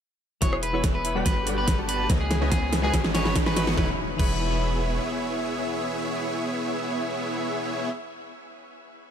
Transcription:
0.41 808-style bass E1, synth keys E3 E4 F#4 G#4 C#5, supersaw synth B3 E4 G#4 C#5 E5, harp B4, clean electric guitar C#5, digital synth lead E5, kick, snare, closed hi-hat, riser
0.53 harp G#4, cross-stick
0.63 harp E4, clean electric guitar B4, closed hi-hat
0.73 synth keys E3 E4 F#4 G#4 C#5, supersaw synth B3 E4 G#4 C#5 E5, harp C#4, digital synth lead E5
0.84 harp B4, kick, snare, closed hi-hat
0.94 harp G#4, clean electric guitar B4
1.05 harp E4, closed hi-hat
1.15 synth keys G3 D4 F#4 A4 B4, supersaw synth B3 F#4 G4 D5 G5, harp C#4, digital synth lead G5
1.25 808-style bass G1, harp B4, clean electric guitar B4, kick, snare, closed hi-hat
1.36 harp G4
1.46 synth keys G3 D4 F#4 A4 B4, supersaw synth B3 F#4 G4 D5 G5, harp F#4, digital synth lead G5, closed hi-hat
1.57 harp D4, clean electric guitar B4
1.67 harp B4, kick, snare, closed hi-hat
1.78 synth keys G3 D4 F#4 A4 B4, supersaw synth B3 F#4 G4 D5 A5, harp G4, digital synth lead A5
1.89 harp F#4, clean electric guitar B4, closed hi-hat
1.99 harp D4
2.09 808-style bass C#2, synth keys C#3 C#4 E4 B4 D#5, supersaw synth B3 E4 G#4 C#5 G#5, kick, snare, closed hi-hat
2.20 harp G#4, clean electric guitar G#4
2.31 harp E4, snare, closed hi-hat
2.40 synth keys C#3 C#4 E4 B4 D#5, supersaw synth B3 E4 G#4 C#5 G#5, harp C#4, digital synth lead G#5
2.51 clean electric guitar G#4, harp B4, kick, snare, closed hi-hat
2.62 harp G#4
2.72 harp E4, snare, closed hi-hat
2.82 synth keys G#3 D#4 F#4 B4 G#5, supersaw synth B3 F#4 G#4 D#5 B5, harp C#4, clean electric guitar G#4, digital synth lead B5
2.94 808-style bass G#1, harp B4, kick, snare, closed hi-hat
3.04 harp G#4, snare
3.14 synth keys G#3 D#4 F#4 B4 G#5, supersaw synth B3 F#4 G#4 D#5 B5, harp F#4, clean electric guitar C#5, digital synth lead B5, snare, closed hi-hat
3.25 harp D#4, snare
3.36 harp B4, kick, snare, closed hi-hat
3.45 synth keys G#3 D#4 F#4 B4 G#5, supersaw synth B3 F#4 G#4 D#5 C#6, harp G#4, clean electric guitar B4, digital synth lead C#6, snare
3.57 harp F#4, snare, closed hi-hat
3.67 harp D#4, snare
3.74 808-style bass E1, synth keys E3 E4 F#4, supersaw synth B3 E4 G#4 C#5 E5, harp C#4, clean electric guitar B4, digital synth lead E5, kick, snare, impact
3.79 synth keys G#4 C#5
4.17 808-style bass E1, synth keys E3 E4 F#4, supersaw synth B3 E4 G#4 C#5 E5, harp C#4, clean electric guitar B4, digital synth lead E5, kick, crash
4.21 synth keys G#4 C#5

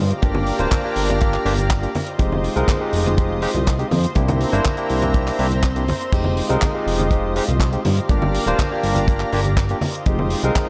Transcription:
Already playing: analog synth pad G4 A#5
0.00 analog synth bass G2, analog synth pad D5 F5
0.11 closed hi-hat
0.22 analog synth bass G1, tine electric piano A#3 D4 F4 G4, kick, closed hi-hat
0.34 muted conga, high conga
0.47 open hi-hat
0.59 analog synth bass D1, tine electric piano A#3 D4 F4 C5, closed hi-hat
0.71 kick, clap, closed hi-hat, high conga
0.84 tine electric piano A#3 D4 F4 G4
0.96 analog synth bass G1, open hi-hat
1.09 closed hi-hat, muted conga, high conga
1.21 tine electric piano A#3 D4 F4 G4, kick, closed hi-hat
1.34 clap
1.45 analog synth bass G1, tine electric piano A#3 D4 F4 G4, open hi-hat
1.58 closed hi-hat, high conga
1.70 kick, clap, closed hi-hat, muted conga
1.82 tine electric piano A#3 D4 F4 G4, closed hi-hat
1.95 analog synth pad F4 C5 D#5, open hi-hat, high conga
2.07 closed hi-hat
2.18 analog synth bass F1, tine electric piano G#3 C4 D#4 G4, kick, closed hi-hat
2.32 high conga
2.44 open hi-hat
2.56 analog synth bass C2, tine electric piano G#3 C4 D#4 A#4, closed hi-hat
2.68 kick, clap, closed hi-hat, high conga
2.80 tine electric piano G#3 C4 D#4 G4
2.93 analog synth bass F1, open hi-hat
3.06 closed hi-hat, muted conga, high conga
3.17 tine electric piano G#3 C4 D#4 G4, kick, closed hi-hat
3.42 tine electric piano G#3 C4 D#4 G4, open hi-hat
3.54 analog synth bass C2, closed hi-hat, high conga
3.67 kick, clap, closed hi-hat
3.78 tine electric piano G#3 C4 D#4 G4, closed hi-hat
3.91 analog synth bass F2, open hi-hat, high conga
4.04 closed hi-hat
4.15 analog synth bass C2, tine electric piano A#3 D4 E4 G4, analog synth pad C4 E5 A#5, kick, closed hi-hat
4.28 closed hi-hat, muted conga, high conga
4.41 open hi-hat
4.52 analog synth bass G1, tine electric piano A#3 D4 E4 C5, closed hi-hat
4.65 kick, clap, closed hi-hat, high conga
4.77 tine electric piano A#3 D4 E4 G4, closed hi-hat
4.90 analog synth bass C2, open hi-hat
5.02 closed hi-hat, muted conga, high conga
5.14 tine electric piano A#3 D4 E4 G4, kick, closed hi-hat
5.28 clap, open hi-hat
5.39 analog synth bass C2, tine electric piano A#3 D4 E4 G4, open hi-hat
5.51 closed hi-hat, high conga
5.63 kick, clap, closed hi-hat, muted conga
5.76 tine electric piano A#3 D4 E4 G4, closed hi-hat
5.88 open hi-hat, muted conga, high conga
6.01 closed hi-hat
6.13 analog synth bass F1, tine electric piano G#3 C4 D#4 G4, analog synth pad F4 D#5, kick, closed hi-hat, crash
6.24 high conga
6.37 open hi-hat
6.49 analog synth bass C2, tine electric piano G#3 C4 D#4 A#4, closed hi-hat
6.62 kick, clap, closed hi-hat, high conga
6.74 tine electric piano G#3 C4 D#4 G4
6.87 analog synth bass F1, open hi-hat
6.99 closed hi-hat, muted conga, high conga
7.11 tine electric piano G#3 C4 D#4 G4, kick, closed hi-hat
7.36 tine electric piano G#3 C4 D#4 G4, open hi-hat
7.48 analog synth bass C2, closed hi-hat, high conga
7.60 kick, clap, closed hi-hat
7.72 tine electric piano G#3 C4 D#4 G4, closed hi-hat
7.85 analog synth bass G2, analog synth pad G4 D5 F5 A#5, open hi-hat, high conga
7.97 closed hi-hat
8.09 analog synth bass G1, tine electric piano A#3 D4 F4 G4, kick, closed hi-hat
8.22 muted conga, high conga
8.35 open hi-hat
8.46 analog synth bass D1, tine electric piano A#3 D4 F4 C5, closed hi-hat
8.59 kick, clap, closed hi-hat, high conga
8.71 tine electric piano A#3 D4 F4 G4
8.83 analog synth bass G1, open hi-hat
8.95 closed hi-hat, muted conga, high conga
9.08 tine electric piano A#3 D4 F4 G4, kick, closed hi-hat
9.20 clap
9.33 analog synth bass G1, tine electric piano A#3 D4 F4 G4, open hi-hat
9.44 closed hi-hat, high conga
9.57 kick, clap, closed hi-hat, muted conga
9.69 tine electric piano A#3 D4 F4 G4, closed hi-hat
9.81 analog synth pad F4 C5 D#5, open hi-hat, high conga
9.94 closed hi-hat
10.06 analog synth bass F1, tine electric piano G#3 C4 D#4 G4, kick, closed hi-hat
10.19 high conga
10.30 open hi-hat
10.43 analog synth bass C2, tine electric piano G#3 C4 D#4 A#4, closed hi-hat
10.55 kick, clap, closed hi-hat, high conga

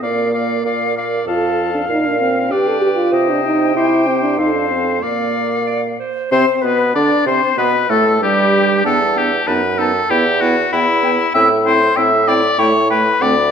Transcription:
0.02 bassoon A#2, french horn A#3, clarinet A#4, oboe D5, flute F5
0.33 clarinet A#4, oboe D5, flute F5
0.64 bassoon A#2, clarinet A#4, oboe D5, flute F5
0.96 clarinet A#4, oboe D5, flute F5
1.26 bassoon F2, french horn F4, clarinet A4, oboe F5, flute A5
1.74 french horn D4
1.88 bassoon A#2, french horn D#4, clarinet A#4, flute F5
2.06 french horn D4
2.20 french horn C4
2.50 bassoon G2, french horn G4, clarinet B4, oboe D5, flute G5
2.68 french horn A4
2.81 french horn G4
2.96 french horn F4
3.11 bassoon C3, clarinet C5, oboe D#5, flute G5
3.30 french horn D4
3.45 french horn D#4
3.75 bassoon C3, french horn E4, clarinet G4, oboe C5
4.07 french horn C4
4.23 french horn D4
4.38 bassoon F2, french horn D#4, clarinet A4, oboe C5, flute F5
4.54 french horn D4
4.70 french horn C4
5.01 bassoon A#2, french horn A#3, clarinet A#4, oboe D5, flute F5
5.67 clarinet D5
5.99 clarinet C5
6.31 bassoon C3, clarinet C4, french horn C4, flute C5, oboe C5
6.62 bassoon B2, clarinet B3, french horn B3, flute B4, oboe B4
6.94 bassoon D3, clarinet D4, french horn D4, flute D5, oboe D5
7.26 bassoon C3, french horn C4, clarinet C4, flute C5, oboe C5
7.57 bassoon B2, french horn B3, clarinet B3, oboe B4, flute B4
7.89 bassoon A2, clarinet A3, french horn A3, oboe A4, flute A4
8.21 bassoon G2, clarinet G3, french horn G3, flute G4, oboe G4
8.84 bassoon E2, french horn B3, clarinet D4, oboe A4, flute G5
9.16 french horn B3, clarinet D4, oboe G4, flute G5
9.46 bassoon F#2, french horn B3, clarinet D#4, oboe B4, flute A5
9.77 french horn B3, clarinet D#4, oboe A4, flute A5
10.10 bassoon E2, french horn B3, clarinet E4, oboe G4, flute G5
10.41 french horn B3, clarinet E4, oboe F#4, flute G5
10.72 bassoon E2, french horn B3, oboe E4, clarinet E4, flute G5
11.03 french horn B3, clarinet E4, flute G5
11.34 bassoon A2, french horn C4, clarinet E4, oboe E5, flute G5
11.65 french horn C4, clarinet E4, oboe C5, flute G5
11.95 bassoon A2, french horn C4, clarinet E4, oboe E5, flute G5
12.28 french horn C4, clarinet E4, oboe D5, flute G5
12.58 bassoon A2, french horn A3, clarinet E4, oboe C#5, flute G5
12.89 french horn A3, clarinet E4, oboe B4, flute G5
13.21 bassoon D2, french horn A3, clarinet C4, oboe D5, flute F#5

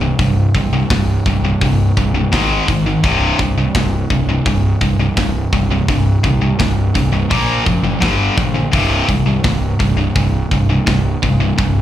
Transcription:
Already playing: picked electric bass C1
0.01 distorted electric guitar C2 G2
0.19 picked electric bass C1, distorted electric guitar C2 G2, kick, open hi-hat
0.55 picked electric bass C2, distorted electric guitar C2 G2, kick, open hi-hat
0.73 distorted electric guitar C2 G2
0.90 picked electric bass C1, distorted electric guitar C2 G2, kick, snare, open hi-hat
1.26 picked electric bass C1, distorted electric guitar C2 G2, kick, open hi-hat
1.45 distorted electric guitar C2 G2
1.61 picked electric bass C1, distorted electric guitar C2 G2, kick, open hi-hat
1.97 picked electric bass C1, distorted electric guitar C2 G2, kick, open hi-hat
2.14 distorted electric guitar C2 G2
2.32 picked electric bass G#1, distorted electric guitar G#2 D#3 G#3, kick, snare, open hi-hat
2.68 picked electric bass G#1, distorted electric guitar G#2 D#3, kick, open hi-hat
2.86 distorted electric guitar G#2 D#3
3.03 picked electric bass C1, distorted electric guitar C2 G2 C3, kick, open hi-hat
3.39 picked electric bass C2, distorted electric guitar C2 G2, kick, open hi-hat
3.58 distorted electric guitar C2 G2
3.75 picked electric bass C1, distorted electric guitar C2 G2, kick, snare, open hi-hat
4.10 picked electric bass C1, distorted electric guitar C2 G2, kick, open hi-hat
4.29 distorted electric guitar C2 G2
4.46 picked electric bass C1, distorted electric guitar C2 G2, kick, open hi-hat
4.81 picked electric bass C1, distorted electric guitar C2 G2, kick, open hi-hat
5.00 distorted electric guitar C2 G2
5.17 picked electric bass C1, distorted electric guitar C2 G2, kick, snare, open hi-hat
5.52 picked electric bass C1, distorted electric guitar C2 G2, kick, open hi-hat
5.71 distorted electric guitar C2 G2
5.88 picked electric bass C1, distorted electric guitar C2 G2, kick, open hi-hat
6.23 distorted electric guitar C2 G2, picked electric bass C2, kick, open hi-hat
6.41 distorted electric guitar C2 G2
6.59 picked electric bass C1, distorted electric guitar C2 G2, kick, snare, open hi-hat
6.95 picked electric bass C1, distorted electric guitar C2 G2, kick, open hi-hat
7.13 distorted electric guitar C2 G2
7.30 picked electric bass A#1, distorted electric guitar A#2 F3 A#3, kick, open hi-hat
7.66 picked electric bass F#1, distorted electric guitar A#2 F3, kick, open hi-hat
7.84 distorted electric guitar A#2 F3
8.00 picked electric bass G1, distorted electric guitar G2 D3 G3, kick, snare, open hi-hat
8.37 picked electric bass A#1, distorted electric guitar G2 D3, kick, open hi-hat
8.55 distorted electric guitar G2 D3
8.72 picked electric bass C1, distorted electric guitar C2 G2 C3, kick, open hi-hat
9.08 distorted electric guitar C2 G2, picked electric bass C2, kick, open hi-hat
9.26 distorted electric guitar C2 G2
9.44 picked electric bass C1, distorted electric guitar C2 G2, kick, snare, open hi-hat
9.79 picked electric bass C1, distorted electric guitar C2 G2, kick, open hi-hat
9.97 distorted electric guitar C2 G2
10.16 picked electric bass C1, distorted electric guitar C2 G2, kick, open hi-hat
10.51 picked electric bass C1, distorted electric guitar C2 G2, kick, open hi-hat
10.70 distorted electric guitar C2 G2
10.86 picked electric bass C1, distorted electric guitar C2 G2, kick, snare, open hi-hat
11.23 picked electric bass C1, distorted electric guitar C2 G2, kick, open hi-hat
11.40 distorted electric guitar C2 G2
11.58 picked electric bass C1, distorted electric guitar C2 G2, kick, open hi-hat

